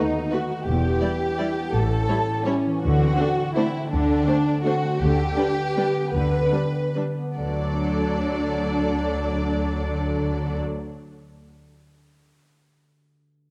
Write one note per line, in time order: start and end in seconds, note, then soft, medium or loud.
0.00 0.68 D#3 soft
0.00 0.49 A3 soft
0.00 0.32 B3 soft
0.00 0.32 D#4 medium
0.00 0.68 F#4 soft
0.00 0.14 A4 soft
0.15 0.68 A4 soft
0.32 0.41 A3 soft
0.32 1.57 B3 soft
0.32 0.41 F#4 soft
0.32 0.67 F#4 medium
0.32 0.40 B4 soft
0.50 0.68 A3 soft
0.67 0.95 E1 soft
0.67 0.96 E2 soft
0.67 1.76 E3 soft
0.67 1.73 G4 medium
0.84 1.39 D4 soft
1.02 1.10 G3 soft
1.02 1.10 E4 soft
1.02 2.09 E4 soft
1.02 1.10 D5 soft
1.22 2.28 G4 soft
1.39 1.47 G3 soft
1.39 1.76 D4 soft
1.39 1.47 E4 soft
1.39 1.47 D5 soft
1.58 1.76 B3 soft
1.75 2.03 A1 medium
1.75 2.04 A2 soft
1.75 2.85 A2 soft
1.75 2.47 A4 medium
1.92 2.46 C#4 soft
2.09 2.18 G3 soft
2.09 2.18 E4 soft
2.09 2.17 C#5 soft
2.29 2.85 G4 soft
2.46 2.54 G3 soft
2.46 2.83 C#4 medium
2.46 2.85 C#4 soft
2.46 2.54 E4 soft
2.46 2.54 C#5 soft
2.66 2.85 E3 soft
2.83 3.12 D2 medium
2.83 3.91 D3 soft
2.83 3.14 D3 medium
2.83 3.54 F#4 medium
3.02 3.56 C4 soft
3.19 3.28 A3 soft
3.19 3.28 D4 soft
3.19 4.28 D4 soft
3.19 3.27 C5 soft
3.39 4.46 A4 soft
3.55 3.65 A3 soft
3.55 4.09 C4 soft
3.55 3.65 D4 soft
3.55 3.90 E4 medium
3.55 3.64 C5 soft
3.75 4.83 A3 soft
3.91 4.20 D2 medium
3.91 4.22 D3 medium
3.91 5.00 D3 medium
3.91 4.64 D4 medium
4.10 4.65 C4 soft
4.28 4.36 A3 soft
4.28 4.36 D4 soft
4.28 5.18 D4 soft
4.28 4.36 C5 soft
4.48 5.02 A4 soft
4.64 4.73 A3 soft
4.64 5.03 C4 soft
4.64 4.73 D4 soft
4.64 4.99 F#4 medium
4.64 4.74 C5 soft
4.84 5.03 A3 soft
5.00 5.30 D2 medium
5.00 6.13 D3 soft
5.00 5.31 D3 medium
5.00 6.14 G4 medium
5.19 5.76 D4 soft
5.37 5.45 G3 soft
5.37 5.46 D4 soft
5.37 6.52 G4 soft
5.37 5.46 B4 soft
5.58 6.74 B4 soft
5.76 5.85 G3 soft
5.76 5.84 D4 soft
5.76 6.31 D4 soft
5.76 5.85 B4 soft
5.96 7.17 B3 soft
6.14 6.44 D2 soft
6.14 7.38 D3 soft
6.14 6.47 D3 soft
6.14 6.94 B4 medium
6.33 6.94 D4 soft
6.53 6.61 G3 soft
6.53 6.61 D4 soft
6.53 7.40 G4 soft
6.53 6.62 B4 soft
6.75 7.40 B4 soft
6.95 7.04 G3 soft
6.95 7.52 D4 soft
6.95 7.04 D4 soft
6.95 7.03 B4 soft
7.18 7.40 B3 soft
7.37 10.60 D2 soft
7.37 10.60 D3 soft
7.37 11.29 D3 soft
7.37 10.60 F#3 soft
7.37 10.60 D4 soft
7.37 10.60 A4 soft
7.37 10.59 D5 soft
7.46 11.09 A3 soft
7.53 11.16 D4 soft
7.60 11.23 F#4 soft
7.67 11.30 D5 soft